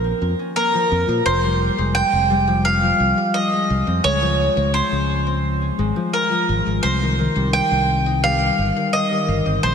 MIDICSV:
0, 0, Header, 1, 4, 480
1, 0, Start_track
1, 0, Tempo, 697674
1, 870, Time_signature, 4, 2, 24, 8
1, 6705, End_track
2, 0, Start_track
2, 0, Title_t, "Mandolin"
2, 0, Program_c, 0, 25
2, 0, Note_on_c, 0, 70, 88
2, 359, Note_off_c, 0, 70, 0
2, 386, Note_on_c, 0, 70, 100
2, 862, Note_off_c, 0, 70, 0
2, 865, Note_on_c, 0, 72, 104
2, 1340, Note_on_c, 0, 79, 106
2, 1362, Note_off_c, 0, 72, 0
2, 1820, Note_off_c, 0, 79, 0
2, 1822, Note_on_c, 0, 77, 105
2, 2299, Note_on_c, 0, 75, 93
2, 2321, Note_off_c, 0, 77, 0
2, 2777, Note_off_c, 0, 75, 0
2, 2780, Note_on_c, 0, 73, 100
2, 3238, Note_off_c, 0, 73, 0
2, 3260, Note_on_c, 0, 72, 94
2, 4198, Note_off_c, 0, 72, 0
2, 4220, Note_on_c, 0, 70, 87
2, 4678, Note_off_c, 0, 70, 0
2, 4697, Note_on_c, 0, 72, 99
2, 5183, Note_on_c, 0, 79, 103
2, 5198, Note_off_c, 0, 72, 0
2, 5663, Note_off_c, 0, 79, 0
2, 5666, Note_on_c, 0, 77, 101
2, 6144, Note_on_c, 0, 75, 98
2, 6163, Note_off_c, 0, 77, 0
2, 6600, Note_off_c, 0, 75, 0
2, 6627, Note_on_c, 0, 72, 95
2, 6705, Note_off_c, 0, 72, 0
2, 6705, End_track
3, 0, Start_track
3, 0, Title_t, "Harp"
3, 0, Program_c, 1, 46
3, 0, Note_on_c, 1, 53, 70
3, 0, Note_on_c, 1, 58, 69
3, 0, Note_on_c, 1, 61, 78
3, 28, Note_on_c, 1, 60, 75
3, 69, Note_off_c, 1, 61, 0
3, 270, Note_on_c, 1, 61, 76
3, 311, Note_off_c, 1, 60, 0
3, 383, Note_off_c, 1, 58, 0
3, 386, Note_on_c, 1, 58, 102
3, 500, Note_off_c, 1, 53, 0
3, 508, Note_on_c, 1, 53, 101
3, 736, Note_off_c, 1, 53, 0
3, 744, Note_on_c, 1, 53, 74
3, 905, Note_off_c, 1, 53, 0
3, 985, Note_on_c, 1, 55, 79
3, 1225, Note_on_c, 1, 56, 84
3, 1463, Note_on_c, 1, 60, 70
3, 1505, Note_off_c, 1, 61, 0
3, 1575, Note_off_c, 1, 55, 0
3, 1583, Note_on_c, 1, 55, 108
3, 1704, Note_on_c, 1, 53, 93
3, 1937, Note_off_c, 1, 53, 0
3, 1945, Note_on_c, 1, 53, 79
3, 2174, Note_off_c, 1, 55, 0
3, 2182, Note_on_c, 1, 55, 77
3, 2420, Note_off_c, 1, 56, 0
3, 2428, Note_on_c, 1, 56, 78
3, 2598, Note_off_c, 1, 58, 0
3, 2663, Note_off_c, 1, 60, 0
3, 2666, Note_on_c, 1, 60, 81
3, 2773, Note_off_c, 1, 56, 0
3, 2782, Note_on_c, 1, 56, 97
3, 2825, Note_off_c, 1, 53, 0
3, 2825, Note_off_c, 1, 55, 0
3, 2901, Note_on_c, 1, 53, 108
3, 3133, Note_off_c, 1, 53, 0
3, 3141, Note_on_c, 1, 53, 75
3, 3375, Note_off_c, 1, 56, 0
3, 3383, Note_on_c, 1, 56, 74
3, 3621, Note_off_c, 1, 60, 0
3, 3623, Note_on_c, 1, 60, 69
3, 3862, Note_on_c, 1, 61, 73
3, 3903, Note_off_c, 1, 60, 0
3, 3973, Note_off_c, 1, 56, 0
3, 3981, Note_on_c, 1, 56, 100
3, 4093, Note_off_c, 1, 53, 0
3, 4101, Note_on_c, 1, 53, 100
3, 4338, Note_off_c, 1, 53, 0
3, 4346, Note_on_c, 1, 53, 76
3, 4581, Note_off_c, 1, 56, 0
3, 4589, Note_on_c, 1, 56, 72
3, 4745, Note_off_c, 1, 53, 0
3, 4745, Note_off_c, 1, 56, 0
3, 4829, Note_on_c, 1, 51, 83
3, 4937, Note_off_c, 1, 51, 0
3, 4945, Note_on_c, 1, 51, 102
3, 5068, Note_on_c, 1, 55, 76
3, 5307, Note_on_c, 1, 60, 71
3, 5348, Note_off_c, 1, 61, 0
3, 5547, Note_on_c, 1, 63, 72
3, 5660, Note_off_c, 1, 55, 0
3, 5668, Note_on_c, 1, 55, 102
3, 6019, Note_off_c, 1, 51, 0
3, 6027, Note_on_c, 1, 51, 73
3, 6065, Note_off_c, 1, 55, 0
3, 6138, Note_off_c, 1, 51, 0
3, 6146, Note_on_c, 1, 51, 101
3, 6268, Note_on_c, 1, 55, 75
3, 6503, Note_off_c, 1, 60, 0
3, 6506, Note_on_c, 1, 60, 72
3, 6665, Note_off_c, 1, 51, 0
3, 6665, Note_off_c, 1, 55, 0
3, 6705, Note_off_c, 1, 60, 0
3, 6705, Note_off_c, 1, 63, 0
3, 6705, End_track
4, 0, Start_track
4, 0, Title_t, "Fingered electric bass"
4, 0, Program_c, 2, 33
4, 0, Note_on_c, 2, 34, 74
4, 81, Note_off_c, 2, 34, 0
4, 149, Note_on_c, 2, 41, 78
4, 228, Note_off_c, 2, 41, 0
4, 630, Note_on_c, 2, 41, 96
4, 708, Note_off_c, 2, 41, 0
4, 744, Note_on_c, 2, 46, 97
4, 825, Note_off_c, 2, 46, 0
4, 866, Note_on_c, 2, 29, 101
4, 1161, Note_off_c, 2, 29, 0
4, 1229, Note_on_c, 2, 29, 101
4, 1385, Note_off_c, 2, 29, 0
4, 1465, Note_on_c, 2, 29, 81
4, 2000, Note_off_c, 2, 29, 0
4, 2063, Note_on_c, 2, 36, 85
4, 2145, Note_off_c, 2, 36, 0
4, 2547, Note_on_c, 2, 36, 94
4, 2627, Note_off_c, 2, 36, 0
4, 2664, Note_on_c, 2, 41, 88
4, 2745, Note_off_c, 2, 41, 0
4, 2781, Note_on_c, 2, 37, 102
4, 3079, Note_off_c, 2, 37, 0
4, 3143, Note_on_c, 2, 37, 100
4, 3303, Note_off_c, 2, 37, 0
4, 3385, Note_on_c, 2, 37, 84
4, 3921, Note_off_c, 2, 37, 0
4, 3982, Note_on_c, 2, 32, 86
4, 4064, Note_off_c, 2, 32, 0
4, 4466, Note_on_c, 2, 32, 93
4, 4546, Note_off_c, 2, 32, 0
4, 4586, Note_on_c, 2, 32, 85
4, 4666, Note_off_c, 2, 32, 0
4, 4705, Note_on_c, 2, 36, 98
4, 5000, Note_off_c, 2, 36, 0
4, 5065, Note_on_c, 2, 36, 93
4, 5224, Note_off_c, 2, 36, 0
4, 5307, Note_on_c, 2, 36, 85
4, 5842, Note_off_c, 2, 36, 0
4, 5907, Note_on_c, 2, 31, 83
4, 5986, Note_off_c, 2, 31, 0
4, 6387, Note_on_c, 2, 31, 95
4, 6467, Note_off_c, 2, 31, 0
4, 6509, Note_on_c, 2, 31, 91
4, 6588, Note_off_c, 2, 31, 0
4, 6629, Note_on_c, 2, 34, 98
4, 6705, Note_off_c, 2, 34, 0
4, 6705, End_track
0, 0, End_of_file